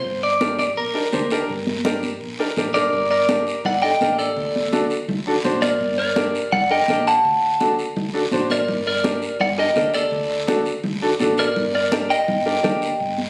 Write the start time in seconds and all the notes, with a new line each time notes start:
Already playing: C5
0.04 G1, high conga, long guiro
0.23 D5
0.40 D4 G4 A#4, high conga, short guiro
0.59 D5, high conga, short guiro
0.77 A#1 A#4, high conga, long guiro
0.94 D4 G4 A#4
1.12 D2 D4 G4 C5, high conga, short guiro
1.30 D4 G4 A#4, short guiro
1.49 G1, high conga, long guiro
1.67 high conga
1.85 D4 G4 A#4, high conga, short guiro
2.03 high conga, short guiro
2.21 A#1, high conga, long guiro
2.39 D4 G4 A#4
2.56 A1 D4 G4 A#4, high conga, short guiro
2.74 G1 D4 G4 A#4 D5, short guiro
2.92 G1, high conga, long guiro
3.11 A#4 D5
3.29 D4 G4 A#4, high conga, short guiro
3.47 short guiro
3.64 G1 D5 F#5, high conga, low conga, long guiro
3.82 D4 G4 A4 D#5 G5
4.01 A1 D4 G4 A#4, high conga, short guiro
4.18 A4 D5, short guiro
4.37 D2, high conga, long guiro
4.56 high conga
4.73 D4 F#4 A4, high conga, short guiro
4.90 short guiro
5.08 D2, high conga, low conga, long guiro
5.27 D4 F#4 A4
5.44 A1 D4 F#4 C5, high conga, short guiro
5.62 A#4 D5, high conga, short guiro
5.80 G1, high conga, long guiro
5.98 A#4 D5
6.16 D4 G4 A#4, high conga, short guiro
6.35 short guiro
6.52 G1 D5 F#5, high conga, low conga, long guiro
6.70 D4 G4 A#4 D#5 G5
6.88 A1 D4 G4 A#4, high conga, short guiro
7.07 F#5 A5, short guiro
7.25 D2, high conga, long guiro
7.60 D4 F#4 A4, high conga, short guiro
7.79 short guiro
7.96 D2, high conga, low conga, long guiro
8.14 D4 F#4 A4
8.31 A1 D4 F#4 C5, high conga, short guiro
8.50 A#4 D5, high conga, short guiro
8.68 G1, high conga, low conga, long guiro
8.87 A#4 D5
9.04 D4 G4 A#4, high conga, short guiro
9.22 short guiro
9.40 G1 D5 F#5, high conga, low conga, long guiro
9.58 D4 G4 A#4 D#5 G5
9.76 D2 D4 G4 A#4, high conga, short guiro
9.94 A4 D5, short guiro
10.11 D2, high conga, long guiro
10.47 D4 F#4 A4, high conga, short guiro
10.65 short guiro
10.84 D2, high conga, low conga, long guiro
11.02 D4 F#4 A4
11.19 A1 D4 F#4 A4, high conga, short guiro
11.37 A#4 D5, short guiro
11.56 G1, high conga, low conga, long guiro
11.75 A#4 D5
11.91 D4 G4 A#4, high conga, short guiro
12.10 D#5 G5, short guiro
12.28 G1, high conga, low conga, long guiro
12.45 D4 G4 A#4
12.63 D2 D4 G4 A#4, high conga, low conga, short guiro
12.82 short guiro
13.00 G1, high conga, long guiro
13.18 high conga